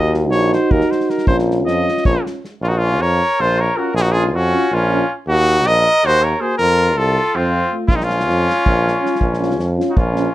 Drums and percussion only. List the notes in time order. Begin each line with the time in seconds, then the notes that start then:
0.14 snare
0.32 snare
0.53 snare
0.71 kick
0.81 snare
0.92 snare
1.00 snare
1.10 snare
1.18 snare
1.27 kick
1.39 snare
1.51 snare
1.68 snare
1.89 snare
1.97 snare
2.05 kick
2.26 snare
2.45 snare
7.88 kick
8.01 snare
8.10 snare
8.20 snare
8.30 snare
8.50 snare
8.66 kick
8.88 snare
9.06 snare
9.15 snare
9.21 kick
9.34 snare
9.43 snare
9.51 snare
9.60 snare
9.80 snare
9.97 kick
10.16 snare